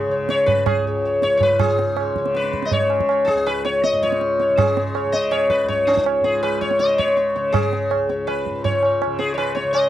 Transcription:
Already playing: tanpura C#2 G#2 C#3
0.09 tanpura C#3, sitar C#5
0.29 sitar C#5, tabla te
0.46 sitar B4, tabla tin, tabla ge
0.66 tanpura C#2, sitar G#4, tabla na, tabla ge
0.87 sitar C#5
1.05 sitar C#5
1.22 tanpura G#2, sitar C#5, tabla te
1.37 sitar C#5, tabla tin, tabla ge
1.43 sitar B4
1.60 tanpura G#2, sitar G#4 C#5, tabla na, tabla ge
1.79 tabla te
1.97 sitar C#5, tabla na
2.16 tanpura C#3, sitar C#5, tabla ke
2.26 tabla te
2.35 sitar B4, tabla te
2.44 tabla te
2.54 tabla ke
2.63 sitar D#5, tabla te
2.71 sitar C#5, tabla tin, tabla ge
2.77 tanpura C#3
2.90 tabla na
3.00 tabla ke
3.09 sitar C#5, tabla na
3.25 sitar G#4 A4, tabla ke
3.34 tanpura C#2, tabla te
3.46 sitar B4, tabla na
3.65 sitar C#5, tabla te
3.83 sitar D#5, tabla te
3.93 tanpura G#2, tabla te
4.03 sitar C#5, tabla ke
4.12 tabla te
4.21 tabla te
4.40 sitar C#5, tabla te
4.49 tanpura C#3
4.57 sitar G#4, tabla na, tabla ge
4.77 sitar C#5, tabla te
4.95 sitar C#5, tabla na
5.06 tanpura C#3
5.12 sitar D#5, tabla te
5.31 sitar C#5, tabla na
5.50 sitar B4, tabla ke
5.64 tanpura C#2
5.68 sitar C#5, tabla tin, tabla ge
5.87 sitar C#4, tabla na
5.97 tabla ke
6.06 sitar C#5, tabla na
6.21 tanpura G#2, sitar G#4, tabla te
6.43 sitar B4, tabla na
6.61 sitar C#5, tabla ke
6.71 tabla te
6.79 tanpura C#3, sitar D#5, tabla te
6.89 tabla te
6.98 sitar C#5, tabla ke
7.08 tabla te
7.17 sitar C#5, tabla te
7.36 tanpura C#3, sitar C#5, tabla te
7.52 sitar G#4, tabla na, tabla ge
7.73 sitar C#5, tabla te
7.91 tanpura C#2, tabla na
8.09 sitar C#5, tabla te
8.27 sitar B4, tabla na
8.46 tanpura G#2, tabla ke
8.64 sitar C#5, tabla tin, tabla ge
8.83 sitar C#5, tabla na
9.02 sitar C#5, tabla na
9.07 tanpura C#3
9.19 sitar G#4, tabla te
9.34 sitar B4 C#5
9.38 tabla na
9.55 sitar C#5, tabla te
9.64 tanpura C#3
9.73 sitar D#5, tabla na

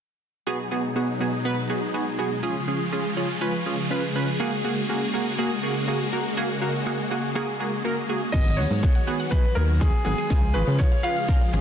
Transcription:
0.47 supersaw synth B2 F#3 G#3 D#4 G#4, analog polysynth B3 F#4 G#4
0.71 analog polysynth B3 F#4 G#4
0.96 analog polysynth B3 F#4 G#4
1.20 analog polysynth B3 F#4 G#4
1.45 analog polysynth B3 F#4 B4
1.69 analog polysynth B3 F#4 G#4
1.94 analog polysynth B3 F#4 G#4
2.18 analog polysynth B3 F#4 G#4
2.43 supersaw synth C#3 F3 F4, analog polysynth C#4 F4 G#4
2.68 analog polysynth C#4 F4 G#4
2.92 analog polysynth C#4 F4 G#4
3.17 analog polysynth C#4 F4 G#4
3.41 analog polysynth C#4 F4 B4
3.66 analog polysynth C#4 F4 G#4
3.90 analog polysynth C#4 F4 B4
4.15 analog polysynth C#4 F4 B4
4.40 analog polysynth A#3 F#4 G#4, supersaw synth A#3 F#4
4.64 analog polysynth A#3 F#4 G#4
4.89 analog polysynth A#3 F#4 G#4
5.14 analog polysynth A#3 F#4 G#4
5.38 analog polysynth A#3 F#4 G#4
5.63 analog polysynth A#3 F#4 G#4
5.88 analog polysynth A#3 F#4 G#4
6.12 analog polysynth A#3 F#4 A#4
6.37 analog polysynth A#3 F#4 G#4
6.62 analog polysynth A#3 F#4 A#4
6.86 analog polysynth A#3 F#4 G#4
7.11 analog polysynth A#3 F#4 G#4
7.35 analog polysynth A#3 F#4 G#4
7.60 analog polysynth A#3 F#4 G#4
7.84 analog polysynth A#3 F#4 A#4
8.09 analog polysynth A#3 F#4 G#4
8.32 analog synth bass G#1, supersaw synth D#3 F#3 G#3 B3 F#4, synth arpeggio sound F#3, analog polysynth B3 F#4 G#4, grand piano D#5, kick, snare, crash
8.46 synth arpeggio sound F#3, grand piano D#5
8.57 analog synth bass D#2, synth arpeggio sound F#3, analog polysynth B3 F#4 G#4, grand piano C#5
8.70 analog synth bass G#2, synth arpeggio sound F#3
8.83 analog polysynth B3 F#4 G#4, synth arpeggio sound G#4, kick, snare
8.95 synth arpeggio sound F#5
9.07 analog polysynth B3 F#4 G#4, synth arpeggio sound F#5
9.20 synth arpeggio sound F#5
9.31 synth arpeggio sound F#3, analog polysynth B3 F#4 G#4, grand piano B4, kick, snare
9.44 synth arpeggio sound F#3
9.55 analog synth bass D#2, synth arpeggio sound F#3, analog polysynth B3 F#4 G#4, grand piano A#4
9.69 synth arpeggio sound F#3
9.80 analog polysynth B3 F#4 G#4, grand piano G#4, synth arpeggio sound G#4, kick, snare
10.05 analog synth bass G#1, synth arpeggio sound F#3, analog polysynth B3 F#4 G#4, grand piano G#4
10.18 synth arpeggio sound G#4
10.30 analog synth bass C#2, supersaw synth C#3 F3 F4 G#4, synth arpeggio sound F3, analog polysynth C#4 F4 G#4, kick, snare, closed hi-hat
10.43 synth arpeggio sound F3
10.54 analog synth bass G#1, synth arpeggio sound F3, analog polysynth C#4 F4 G#4, grand piano B4, closed hi-hat
10.67 analog synth bass C#3, synth arpeggio sound F3
10.79 analog polysynth C#4 F4 G#4, synth arpeggio sound G#4, grand piano C#5, kick, snare, closed hi-hat
10.92 synth arpeggio sound F5
11.03 analog polysynth C#4 F4 B4, grand piano F5, synth arpeggio sound F5, closed hi-hat
11.17 synth arpeggio sound F5
11.28 synth arpeggio sound F3, analog polysynth C#4 F4 A#4, kick, snare, closed hi-hat
11.41 synth arpeggio sound F3
11.53 analog synth bass G#1, synth arpeggio sound F3, analog polysynth C#4 F4 G#4, closed hi-hat

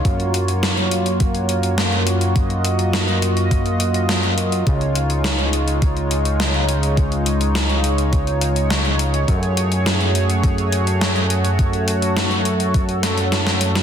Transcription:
Already playing: analog synth pad F4 C#5
0.05 analog synth bass F#2, analog synth pad A#3 F#4, kick, closed hi-hat
0.20 closed hi-hat
0.34 closed hi-hat
0.48 closed hi-hat
0.63 snare, closed hi-hat
0.77 closed hi-hat
0.91 closed hi-hat
1.06 closed hi-hat
1.20 kick, closed hi-hat
1.35 closed hi-hat
1.49 closed hi-hat
1.63 closed hi-hat
1.78 snare, closed hi-hat
1.92 closed hi-hat
2.07 closed hi-hat
2.21 closed hi-hat
2.36 analog synth pad D#5, kick, closed hi-hat
2.50 closed hi-hat
2.65 closed hi-hat
2.79 closed hi-hat
2.93 snare, closed hi-hat
3.08 closed hi-hat
3.22 closed hi-hat
3.37 closed hi-hat
3.51 kick, closed hi-hat
3.66 closed hi-hat
3.80 closed hi-hat
3.94 closed hi-hat
4.09 snare, closed hi-hat
4.23 closed hi-hat
4.38 closed hi-hat
4.52 closed hi-hat
4.67 analog synth bass C#2, analog synth pad G#3 D#4 C#5, kick, closed hi-hat
4.81 closed hi-hat
4.95 closed hi-hat
5.10 closed hi-hat
5.24 snare, closed hi-hat
5.39 closed hi-hat
5.53 closed hi-hat
5.68 closed hi-hat
5.82 kick, closed hi-hat
5.97 closed hi-hat
6.11 closed hi-hat
6.25 closed hi-hat
6.40 snare, closed hi-hat
6.54 closed hi-hat
6.69 closed hi-hat
6.83 closed hi-hat
6.97 kick, closed hi-hat
7.12 closed hi-hat
7.26 closed hi-hat
7.41 closed hi-hat
7.55 snare, closed hi-hat
7.70 closed hi-hat
7.84 closed hi-hat
7.98 closed hi-hat
8.13 kick, closed hi-hat
8.27 closed hi-hat
8.41 closed hi-hat
8.56 closed hi-hat
8.70 snare, closed hi-hat
8.85 closed hi-hat
8.99 closed hi-hat
9.14 closed hi-hat
9.28 analog synth bass F#2, analog synth pad A3 F#4 G#4, kick, closed hi-hat
9.43 closed hi-hat
9.57 closed hi-hat
9.72 closed hi-hat
9.86 snare, closed hi-hat
10.01 closed hi-hat
10.15 closed hi-hat
10.30 closed hi-hat
10.44 kick, closed hi-hat
10.58 closed hi-hat
10.72 closed hi-hat
10.87 closed hi-hat
11.01 snare, closed hi-hat
11.16 closed hi-hat
11.30 closed hi-hat
11.45 closed hi-hat
11.59 analog synth pad A4, kick, closed hi-hat
11.73 closed hi-hat
11.88 closed hi-hat
12.02 closed hi-hat
12.17 snare, closed hi-hat
12.31 closed hi-hat
12.45 closed hi-hat
12.60 closed hi-hat
12.74 kick, closed hi-hat
12.89 closed hi-hat
13.03 snare, closed hi-hat
13.18 closed hi-hat
13.32 snare, closed hi-hat
13.47 snare, closed hi-hat
13.61 closed hi-hat
13.75 snare, closed hi-hat

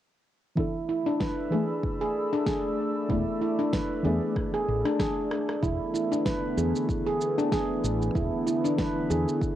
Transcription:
0.55 synth stab E3 B3 D4 A4, ambient pad A3 D5 B5 E6, handpan E4, kick
0.89 handpan E4
1.06 handpan D4
1.20 handpan B4, kick, snare
1.50 synth stab E3 B3 D4, handpan G#4
1.54 synth stab A3
1.83 kick
2.01 handpan G#4
2.33 handpan D4
2.47 handpan G#4, kick, snare
3.08 fretless electric bass E1, synth stab E3 B3 D4, handpan E4, kick
3.12 synth stab A3
3.42 handpan E4
3.59 handpan D4
3.73 handpan B4, kick, snare
4.03 fretless electric bass E2, synth stab E3 A3 B3 D4, handpan G#4
4.36 kick, cross-stick
4.54 handpan G#4, cross-stick
4.68 fretless electric bass A1
4.85 handpan D4, cross-stick
4.99 handpan G#4, kick, cross-stick, snare
5.31 cross-stick
5.49 cross-stick
5.63 fretless electric bass E1, ambient pad D3 E3 A3 B3 E4, handpan E4, kick, shaker
5.94 handpan E4, shaker
6.12 handpan D4, shaker
6.26 handpan B4, kick, snare, shaker
6.58 fretless electric bass E2, handpan G#4, shaker
6.76 shaker
6.89 kick, shaker
7.07 handpan G#4
7.21 shaker
7.38 handpan D4, shaker
7.52 handpan G#4, kick, snare, shaker
7.84 fretless electric bass A1, shaker
8.02 shaker
8.15 fretless electric bass E1, handpan E4, kick, shaker
8.47 handpan E4, shaker
8.64 handpan D4, shaker
8.78 handpan B4, kick, snare, shaker
9.10 fretless electric bass E2, handpan G#4, shaker
9.29 shaker
9.41 kick, shaker

